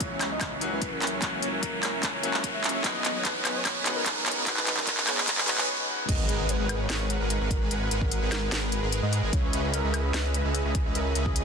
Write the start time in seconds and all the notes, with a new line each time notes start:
Already playing: C#3 E3 F#3 A#3 C#4 E4 F#4, riser
0.00 C#5, kick, closed hi-hat
0.11 C#2 C#4 C#5 E5 G#5 A#5
0.21 clap, closed hi-hat, high woodblock
0.32 D#5
0.41 C#2 C#4 C#5 E5 G#5 A#5, kick, clap, closed hi-hat, high woodblock
0.59 E3 F#3 A#3 C#4, closed hi-hat
0.63 F#4
0.72 C#2 C#4 B4 C#5 E5 G#5 A#5
0.82 kick, closed hi-hat
0.92 C#2 C#4 A#4 C#5 E5 G#5 A#5
1.02 clap, closed hi-hat
1.07 closed hi-hat
1.12 C#2 C#4 C#5 E5 G#5 C#6
1.20 C#2 E3 F#3 A#3 C#4 C#5 E5 G#5 A#5, kick, clap, closed hi-hat
1.24 F#4
1.42 C#2 C#4 C#5 E5 G#5 A#5, closed hi-hat
1.53 A#4
1.63 kick, closed hi-hat
1.73 C#2 C#4 C#5 E5 G#5 A#5
1.83 A#4, clap, closed hi-hat, high woodblock
2.03 C#2 C#4 C#5 E5 G#5, kick, clap, closed hi-hat
2.13 C#5
2.21 E3 F#3 A#3 C#4 F#4, closed hi-hat
2.33 C#2 C#4 C#5 E5 G#5 A#5, clap
2.44 kick, closed hi-hat
2.54 C#2 C#4 C#5 E5 G#5 A#5
2.64 clap, closed hi-hat
2.69 closed hi-hat
2.74 C#2 C#4 C#5 E5 G#5 C#6
2.82 B1 D#3 G#3 B3 C#4 D#4 B4 C#5 D#5 G#5, kick, clap, closed hi-hat
2.86 F#4
3.04 B1 B3 B4 C#5 D#5 G#5, clap, closed hi-hat
3.25 B4, kick, clap, closed hi-hat
3.35 B1 B3 B4 C#5 D#5 G#5
3.45 clap, closed hi-hat, high woodblock
3.55 C#5
3.65 B1 B3 D#5, kick, clap, closed hi-hat, high woodblock
3.83 D#3 G#3 B3 C#4, clap, closed hi-hat
3.87 F#4
3.96 B1 B3 A#4 B4 C#5 D#5 G#5
4.06 kick, clap, closed hi-hat
4.16 B1 B3 A#4 B4 C#5 D#5 G#5
4.26 clap, closed hi-hat
4.31 closed hi-hat
4.36 B1 B3 B4 C#5 D#5 B5
4.44 B1 D#3 G#3 B3 C#4 B4, kick, clap, closed hi-hat
4.48 F#4
4.57 clap
4.66 B1 B3 B4 C#5 D#5 G#5, clap, closed hi-hat
4.77 A#4, clap
4.87 kick, clap, closed hi-hat
4.97 B1 B3 B4 C#5 D#5 G#5, clap
5.07 G#4, clap, closed hi-hat, high woodblock
5.18 clap
5.27 B1 B3 C#5 G#5, kick, clap, closed hi-hat
5.38 G#4, clap
5.46 D#3 G#3 B3 C#4, clap, closed hi-hat
5.50 F#4
5.58 B1 B3 B4 C#5 D#5 G#5, clap
6.08 G#1 G#3 G#4 A#4 B4 D#5 F#5, kick, closed hi-hat, crash, impact
6.29 G#1 G#3 G#4 A#4 B4 F#5, closed hi-hat
6.49 B4, closed hi-hat
6.59 G#1 G#3 G#4 A#4 B4 F#5
6.69 closed hi-hat, high woodblock
6.80 C#5
6.90 G#1 G#3 G#4 A#4 B4 F#5, snare, closed hi-hat, high woodblock
7.10 closed hi-hat
7.20 G#1 G#3 G#4 A#4 B4 F#5
7.30 closed hi-hat
7.40 G#1 G#3 G#4 A#4 B4 F#5
7.51 kick, closed hi-hat
7.61 G#1 G#3 G#4 A#4 B4 G#5
7.71 G#1 G#3 G#4 A#4 B4 F#5, closed hi-hat
7.91 G#1 G#3 G#4 A#4 B4 F#5, closed hi-hat
8.01 A#4, kick
8.12 closed hi-hat
8.22 G#1 G#3 G#4 A#4 B4 F#5
8.32 A#4, snare, closed hi-hat, high woodblock
8.52 G#1 G#3 G#4 A#4 B4 F#5, snare, closed hi-hat
8.62 B4
8.72 closed hi-hat
8.82 G#1 G#3 G#4 A#4 B4 F#5
8.92 closed hi-hat
9.03 G#2 G#3 G#4 A#4 B4 D#5 F#5
9.13 closed hi-hat
9.23 G#1 G#3 G#4 A#4 B4 G#5
9.33 C#2 C#4 C#5, kick, closed hi-hat
9.53 C#2 C#4 G#4 B4 D#5 E5, closed hi-hat
9.73 A#4, closed hi-hat
9.84 C#2 C#4 G#4 B4 D#5 E5
9.94 closed hi-hat, high woodblock
10.04 B4
10.14 C#2 C#4 G#4 D#5 E5, snare, closed hi-hat, high woodblock
10.34 closed hi-hat
10.45 C#2 C#4 G#4 B4 D#5 E5
10.55 closed hi-hat
10.65 C#2 C#4 G#4 B4 D#5 E5
10.75 kick, closed hi-hat
10.85 C#2 C#4 G#4 B4 D#5 E5
10.95 C#2 C#4 G#4 A#4 B4 D#5 E5, closed hi-hat
11.15 C#2 C#4 G#4 B4 D#5 E5, closed hi-hat
11.26 G#4, kick
11.36 closed hi-hat